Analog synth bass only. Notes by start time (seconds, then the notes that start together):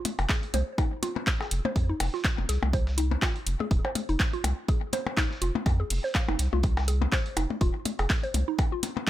0.19 F1
0.54 C2
1.51 F1
1.76 F2
2.00 F1
2.38 F1
2.49 C2
2.63 C2
3.47 F1
3.71 D#1
4.09 F1
4.44 C2
5.42 F1
5.66 F2
5.90 F1
6.29 F1
6.39 C2
6.53 C2
7.37 F1
7.61 D#1
7.99 F1
8.34 C2